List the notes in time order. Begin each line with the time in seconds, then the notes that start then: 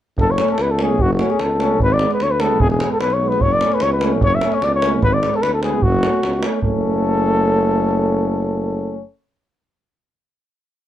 0.17 F#1 A4, davul low
0.31 C#5
0.38 A3 C#4, davul high
0.48 A4, davul high
0.58 C#2 B4, davul high
0.71 A4
0.79 A3 C#4, davul high
0.83 G#4
0.99 F#1 F#4, davul low
1.14 F#4
1.19 A3 C#4, davul high
1.30 G#4, davul high
1.39 C#2 A4, davul high
1.58 A3 C#4, davul high
1.80 G#1 B4, davul low
1.93 D5
1.99 G#3 B3, davul high
2.11 B4, davul high
2.20 D2 C#5, davul high
2.31 B4
2.39 G#3 B3 A4, davul high
2.60 E1 G#4, davul low
2.70 G#4, davul high
2.79 G#3 B3, davul high
2.92 A4
3.00 B1 B4, davul high
3.10 C#5, davul high
3.20 G#3 B3
3.28 B4, davul high
3.40 F#1 C#5, davul low
3.53 D5
3.60 A3 C#4, davul high
3.72 B4, davul high
3.80 C#2 C#5, davul high
3.92 B4
4.01 A3 C#4, davul high
4.21 F#1 C#5, davul low
4.35 E5
4.41 A3 C#4, davul high
4.52 C#5, davul high
4.62 C#2 D5, davul high
4.75 C#5
4.82 A3 C#4, davul high
5.02 G#1 B4, davul low
5.13 D5
5.21 G#3 B3, davul high
5.34 A4, davul high
5.42 D2 B4, davul high
5.54 A4
5.61 G#3 B3 G#4, davul high
5.82 F#1 F#4, davul low
6.01 A3 C#4, davul high
6.13 davul high
6.23 C#2, davul high
6.33 davul high
6.41 A3 C#4, davul high
6.52 davul high
6.62 F#1 A3 C#4 A4, davul low